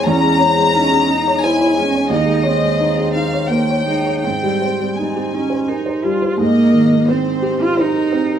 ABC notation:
X:1
M:3/4
L:1/16
Q:1/4=87
K:Ab
V:1 name="Violin section"
b8 a4 | e6 f2 g4 | g4 a6 z2 | e4 c4 B4 |]
V:2 name="Felt piano"
[_F,,d] A, d A, E A E d c d A, d | E,, A, d A, E A E d c d A, d | A,, G, c G, E G E c B c G, c | A,,2 E,2 C2 G2 c2 C2 |]
V:3 name="Cello"
D2 C2 D2 E2 _F2 D2 | E2 C6 B,2 E2 | C4 C2 D2 E2 F2 | B,4 C3 F E4 |]